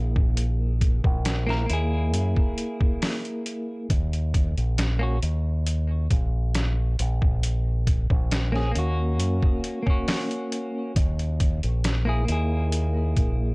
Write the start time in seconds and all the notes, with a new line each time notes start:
Already playing: A#1 A#3 E4 G#4
0.16 kick
0.37 closed hi-hat
0.81 kick, closed hi-hat
1.04 A#1, kick
1.25 snare, closed hi-hat
1.47 A#3 E4 A#4, snare
1.66 A#3 E4, closed hi-hat
1.70 D#2 G#4
2.14 F#2, closed hi-hat
2.36 kick
2.58 closed hi-hat
2.81 kick
3.02 snare, open hi-hat
3.25 closed hi-hat
3.46 closed hi-hat
3.90 D#2, kick, closed hi-hat
4.13 closed hi-hat
4.34 kick, closed hi-hat
4.58 A#1, closed hi-hat
4.78 snare, closed hi-hat
4.99 A#3 C#4 F#4
5.23 D#2, closed hi-hat
5.67 closed hi-hat
6.10 A#1, kick, closed hi-hat
6.55 snare, closed hi-hat
6.99 A#1, closed hi-hat
7.22 kick
7.43 closed hi-hat
7.87 kick, closed hi-hat
8.10 A#1, kick
8.31 snare, closed hi-hat
8.52 A#3 C#4 G#4, snare
8.71 A#3 C#4
8.75 D#2 F#4, closed hi-hat
9.20 F#2, closed hi-hat
9.43 kick
9.64 closed hi-hat
9.83 A#3 C#4
9.87 F#4, kick
10.08 snare, open hi-hat
10.31 closed hi-hat
10.52 closed hi-hat
10.96 D#2, kick, closed hi-hat
11.19 closed hi-hat
11.40 kick, closed hi-hat
11.63 A#1, closed hi-hat
11.84 snare, closed hi-hat
12.05 A#3 E4 G#4
12.25 A#3 E4, closed hi-hat
12.29 D#2 G#4
12.72 closed hi-hat
13.17 A#1, kick, closed hi-hat